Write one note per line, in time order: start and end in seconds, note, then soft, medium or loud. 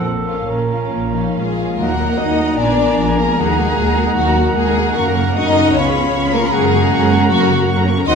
0.00 0.43 A#1 soft
0.00 0.43 A#2 soft
0.00 1.81 A#2 soft
0.00 0.24 F4 soft
0.00 0.51 A4 medium
0.25 0.69 C#4 soft
0.25 0.43 F4 soft
0.25 0.70 F4 soft
0.25 0.70 F5 soft
0.48 0.87 A#1 soft
0.48 0.87 A#2 soft
0.48 1.11 C#4 soft
0.48 1.59 A#4 soft
0.48 1.34 C#5 soft
0.70 1.12 C#4 soft
0.70 1.13 F4 soft
0.70 1.12 F5 soft
0.92 1.32 A#1 soft
0.92 1.31 A#2 soft
0.92 1.81 F3 soft
1.14 1.57 C#4 soft
1.14 1.36 D#4 soft
1.14 1.57 F4 soft
1.14 1.55 F5 soft
1.35 1.75 A#1 soft
1.35 1.74 A#2 soft
1.35 1.76 G#3 soft
1.35 1.79 F4 soft
1.35 1.77 G#4 soft
1.35 1.81 C#5 soft
1.56 1.79 C#4 soft
1.56 1.81 F4 soft
1.56 1.78 F5 soft
1.78 2.15 D#2 medium
1.78 2.60 D#3 soft
1.78 1.89 F#3 soft
1.78 2.19 A#3 soft
1.78 2.62 A#3 soft
1.78 1.89 D#4 soft
1.78 2.20 A#4 soft
1.78 1.88 D#5 soft
1.78 2.60 F#5 soft
1.78 4.93 A#5 soft
1.88 1.99 A#3 soft
1.88 1.99 F#4 soft
1.88 2.00 F#5 soft
1.98 2.10 F#3 soft
1.98 3.56 A#3 soft
1.98 2.10 D#4 soft
1.98 2.10 D#5 soft
2.09 2.19 A#3 soft
2.09 2.19 F#4 soft
2.09 2.19 F#5 soft
2.17 2.55 D#2 soft
2.17 2.28 F#3 soft
2.17 2.28 D#4 soft
2.17 2.58 D#4 medium
2.17 2.60 F#4 soft
2.17 2.58 D#5 medium
2.17 2.28 D#5 soft
2.28 2.39 A#3 soft
2.28 2.39 F#4 soft
2.28 2.39 F#5 soft
2.38 2.49 F#3 soft
2.38 2.60 D#4 soft
2.38 2.49 D#4 soft
2.38 2.49 D#5 soft
2.47 2.57 A#3 soft
2.47 2.58 F#4 soft
2.47 2.58 F#5 soft
2.56 2.94 A#1 soft
2.56 3.39 A#2 soft
2.56 2.68 A#3 soft
2.56 3.17 D4 medium
2.56 2.68 F4 soft
2.56 3.17 D5 medium
2.56 3.38 G#5 soft
2.56 2.67 A#5 soft
2.60 3.40 B3 soft
2.67 2.79 B3 soft
2.67 2.79 D4 soft
2.67 2.78 G#5 soft
2.77 3.39 F3 soft
2.77 2.89 A#3 soft
2.77 2.89 F4 soft
2.77 2.88 A#5 soft
2.87 2.98 B3 soft
2.87 2.98 D4 soft
2.87 2.98 G#5 soft
2.97 3.33 A#1 soft
2.97 3.08 A#3 soft
2.97 3.08 F4 soft
2.97 3.39 G#4 soft
2.97 3.07 A#5 soft
3.07 3.18 B3 soft
3.07 3.18 D4 soft
3.07 3.18 G#5 soft
3.17 3.38 A#3 soft
3.17 3.28 A#3 soft
3.17 3.39 F4 soft
3.17 3.28 F4 soft
3.17 3.37 A#4 medium
3.17 3.28 A#5 soft
3.28 3.38 B3 soft
3.28 3.38 D4 soft
3.28 3.38 G#5 soft
3.37 3.73 D#2 soft
3.37 4.16 D#3 soft
3.37 4.15 G#3 soft
3.37 3.47 A#3 soft
3.37 4.97 A#3 soft
3.37 3.47 F#4 soft
3.37 4.17 G#4 medium
3.37 5.78 F#5 soft
3.37 3.48 F#5 soft
3.48 3.58 D#4 soft
3.48 3.58 A#4 soft
3.48 3.58 A#5 soft
3.57 4.35 A#3 soft
3.57 3.67 A#3 soft
3.57 3.67 F#4 soft
3.57 3.68 F#5 soft
3.67 3.77 D#4 soft
3.67 3.77 A#4 soft
3.67 3.77 A#5 soft
3.76 4.12 D#2 soft
3.76 3.86 A#3 soft
3.76 3.86 F#4 soft
3.76 4.55 F#4 soft
3.76 3.87 F#5 soft
3.86 3.96 D#4 soft
3.86 3.97 A#4 soft
3.86 3.97 A#5 soft
3.96 4.07 A#3 soft
3.96 4.76 D#4 soft
3.96 4.07 F#4 soft
3.96 4.07 F#5 soft
4.06 4.17 D#4 soft
4.06 4.17 A#4 soft
4.06 4.16 A#5 soft
4.15 4.52 D#2 soft
4.15 4.98 D#3 soft
4.15 4.57 F#3 medium
4.15 4.25 A#3 soft
4.15 4.55 F#4 medium
4.15 4.26 F#4 soft
4.15 4.26 F#5 soft
4.26 4.37 D#4 soft
4.26 4.37 A#4 soft
4.26 4.37 A#5 soft
4.36 5.76 A#3 soft
4.36 4.47 A#3 soft
4.36 4.47 F#4 soft
4.36 4.46 F#5 soft
4.46 4.57 D#4 soft
4.46 4.58 A#4 soft
4.46 4.57 A#5 soft
4.56 4.92 D#2 medium
4.56 4.95 G#3 medium
4.56 4.67 A#3 soft
4.56 4.67 F#4 soft
4.56 4.95 G#4 medium
4.56 4.67 F#5 soft
4.67 4.77 D#4 soft
4.67 4.77 A#4 soft
4.67 4.77 A#5 soft
4.76 4.88 A#3 soft
4.76 4.98 D#4 soft
4.76 4.87 F#4 soft
4.76 4.86 F#5 soft
4.86 4.98 D#4 soft
4.86 4.98 A#4 soft
4.86 4.97 A#5 soft
4.95 5.76 F#2 soft
4.95 5.32 F#2 medium
4.95 5.35 A#3 medium
4.95 5.06 A#3 soft
4.95 8.03 C#4 soft
4.95 5.06 F#4 soft
4.95 5.35 A#4 medium
4.95 5.74 A#5 soft
4.95 5.05 C#6 soft
5.04 5.17 C#4 soft
5.04 5.17 A#4 soft
5.04 5.15 A#5 soft
5.16 5.73 C#3 soft
5.16 5.27 A#3 soft
5.16 5.27 F#4 soft
5.16 5.26 C#6 soft
5.27 5.36 C#4 soft
5.27 5.37 A#4 soft
5.27 5.37 A#5 soft
5.35 5.70 F#2 medium
5.35 5.45 A#3 soft
5.35 5.75 D#4 medium
5.35 5.76 F#4 soft
5.35 5.45 F#4 soft
5.35 5.74 D#5 medium
5.35 5.46 C#6 soft
5.48 5.56 C#4 soft
5.48 5.56 A#4 soft
5.48 5.56 A#5 soft
5.55 5.66 A#3 soft
5.55 6.32 C#4 soft
5.55 5.66 F#4 soft
5.55 5.66 C#6 soft
5.67 5.76 C#4 soft
5.67 5.76 A#4 soft
5.67 5.76 A#5 soft
5.74 6.09 C#2 medium
5.74 6.54 C#3 medium
5.74 5.85 B3 soft
5.74 6.33 C#4 medium
5.74 5.85 F4 soft
5.74 6.34 C#5 medium
5.74 6.53 F5 soft
5.74 6.54 B5 soft
5.74 5.85 C#6 soft
5.87 5.96 C#4 soft
5.87 5.95 G#4 soft
5.87 5.96 B5 soft
5.94 6.54 G#3 soft
5.94 6.05 B3 soft
5.94 6.05 F4 soft
5.94 6.05 C#6 soft
6.05 6.15 C#4 soft
6.05 6.15 G#4 soft
6.05 6.15 B5 soft
6.13 6.48 C#2 medium
6.13 6.24 B3 soft
6.13 6.53 F4 soft
6.13 6.24 F4 soft
6.13 6.24 C#6 soft
6.24 6.34 C#4 soft
6.24 6.34 G#4 soft
6.24 6.34 B5 soft
6.33 6.40 A#3 medium
6.33 6.44 B3 soft
6.33 6.44 F4 soft
6.33 6.52 A#4 medium
6.33 6.43 C#6 soft
6.45 6.54 C#4 soft
6.45 6.54 G#4 soft
6.45 6.53 B5 soft
6.53 6.86 F#2 medium
6.53 7.29 F#2 medium
6.53 7.28 G#3 medium
6.53 6.62 A#3 medium
6.53 6.62 F#4 soft
6.53 7.30 G#4 medium
6.53 8.04 F#5 medium
6.53 7.80 A#5 medium
6.53 6.62 C#6 soft
6.62 6.72 C#4 soft
6.62 6.72 A#4 soft
6.62 6.72 A#5 soft
6.72 7.48 C#3 soft
6.72 6.82 A#3 soft
6.72 6.82 F#4 soft
6.72 6.82 C#6 soft
6.83 6.92 C#4 soft
6.83 6.92 A#4 soft
6.83 6.92 A#5 soft
6.91 7.26 F#2 medium
6.91 7.00 A#3 soft
6.91 7.68 F#4 soft
6.91 7.00 F#4 soft
6.91 7.01 C#6 soft
7.02 7.11 C#4 soft
7.02 7.11 A#4 soft
7.02 7.11 A#5 soft
7.10 7.20 A#3 soft
7.10 7.86 C#4 soft
7.10 7.21 F#4 soft
7.10 7.21 C#6 soft
7.21 7.31 C#4 soft
7.21 7.30 A#4 soft
7.21 7.31 A#5 soft
7.30 8.08 F#2 medium
7.30 7.64 F#2 medium
7.30 7.68 F#3 medium
7.30 7.40 A#3 medium
7.30 7.68 F#4 medium
7.30 7.40 F#4 medium
7.30 7.39 C#6 medium
7.40 7.50 C#4 soft
7.40 7.50 A#4 soft
7.40 7.49 A#5 soft
7.50 8.09 C#3 soft
7.50 7.59 A#3 medium
7.50 7.59 F#4 medium
7.50 7.59 C#6 soft
7.60 7.69 C#4 soft
7.60 7.69 A#4 soft
7.60 7.69 A#5 soft
7.69 8.03 F#2 medium
7.69 7.78 A#3 medium
7.69 8.15 F#4 soft
7.69 7.78 F#4 soft
7.69 7.78 C#6 soft
7.79 7.88 C#4 soft
7.79 7.88 A#4 soft
7.79 7.88 A#5 soft
7.88 7.98 A#3 medium
7.88 8.08 C#4 soft
7.88 7.98 F#4 medium
7.88 7.97 C#6 medium
7.98 8.07 C#4 soft
7.98 8.07 A#4 soft
7.98 8.08 A#5 soft
8.07 8.15 D#2 medium
8.07 8.15 D#3 medium
8.07 8.15 C4 medium
8.07 8.15 D#4 medium
8.07 8.15 F#4 medium
8.07 8.15 D#5 loud
8.07 8.15 F#5 medium
8.07 8.14 C6 medium
8.07 8.15 D#6 medium